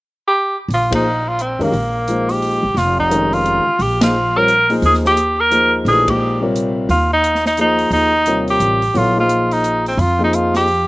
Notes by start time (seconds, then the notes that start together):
0.28 G4
0.68 A#1, open hi-hat
0.74 F4
0.90 F3 A#3 D#4 G#4 C5, kick, ride
0.95 D#4
1.28 F4
1.39 C4, closed hi-hat
1.59 F2 D#3 G#3 C#4 G4 A#4, open hi-hat
1.63 A#3
1.72 A#1, open hi-hat
2.08 F3 G#3 A#3 D#4 C5, closed hi-hat
2.29 G4, open hi-hat
2.42 open hi-hat
2.63 G#1
2.74 F1 F4, snare, open hi-hat
2.98 D#4, kick
3.10 D#3 G#3 C#4 G4 A#4, closed hi-hat
3.33 F4, open hi-hat
3.46 closed hi-hat
3.66 muted upright bass stroke
3.79 A#1 G4, open hi-hat
4.01 F3 A#3 D#4 F4 G#4 C5, snare, ride
4.36 G3 C4 F4 A#4 C#5
4.48 closed hi-hat
4.69 F3 A#3 D#4 G#4 C5, open hi-hat
4.82 D#2 G#4, open hi-hat
4.94 snare
5.05 G4, snare
5.17 closed hi-hat
5.41 A#4
5.50 F3 A#3 D#4 G#4 C5, closed hi-hat
5.85 A#1 E3 A3 D4 G4 G#4 B4, open hi-hat
6.07 F3 G#3 A#3 D#4 G4 C5, kick, ride
6.40 C3 G3 F4 A#4 C#5
6.56 closed hi-hat
6.89 D#2 F4, open hi-hat
7.13 D#4
7.24 closed hi-hat
7.35 snare
7.46 D#4, snare
7.57 F3 A#3 D#4 G#4 C5, closed hi-hat
7.79 open hi-hat
7.91 D#2 D#4, open hi-hat
8.26 C3 G3 F4 A#4 C#5, closed hi-hat
8.48 G4, open hi-hat
8.60 A1, closed hi-hat
8.82 open hi-hat
8.94 A#1 F#3 B3 E4 F4 A4 C#5, open hi-hat
9.16 F3 A#3 D#4 F4 G#4 C5
9.29 closed hi-hat
9.51 D#4, open hi-hat
9.64 closed hi-hat
9.86 C4, open hi-hat
9.97 F2 F4, open hi-hat
10.19 F3 A#3 D#4 G#4 C5
10.24 D#4
10.33 F4, closed hi-hat
10.54 G4, snare, open hi-hat
10.68 open hi-hat